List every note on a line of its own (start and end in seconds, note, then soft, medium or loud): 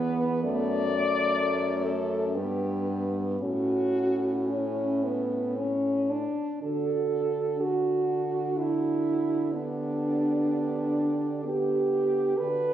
0.00 0.39 E2 medium
0.00 0.45 B3 medium
0.00 1.08 B3 loud
0.00 0.42 B4 loud
0.43 2.36 F#2 medium
0.43 0.88 A3 medium
0.43 1.86 D5 loud
0.88 2.37 A3 medium
1.36 1.87 A3 medium
1.84 2.37 C#4 medium
1.84 2.36 A4 loud
2.34 3.40 G2 medium
2.34 3.40 B3 medium
2.34 3.09 G4 loud
3.41 6.25 A2 medium
3.41 6.07 C#4 medium
3.41 4.38 C#4 medium
3.41 4.52 F#4 loud
4.50 5.05 C#4 medium
4.50 6.11 E4 medium
5.04 5.59 B3 medium
5.57 6.11 C#4 medium
6.10 6.62 D4 medium
6.62 12.34 D3 medium
6.62 7.56 D4 medium
6.62 7.56 F#4 medium
6.62 7.62 A4 medium
7.59 9.53 D4 medium
7.59 9.48 F#4 medium
7.59 8.59 F#4 medium
8.58 9.54 E4 medium
9.52 11.27 B3 medium
9.52 11.44 D4 medium
9.52 11.41 G4 medium
11.44 12.36 B3 medium
11.44 12.39 G4 medium
11.44 12.37 G4 medium
12.37 12.74 D3 medium
12.37 12.74 D4 medium
12.37 12.74 F#4 medium
12.37 12.74 B4 loud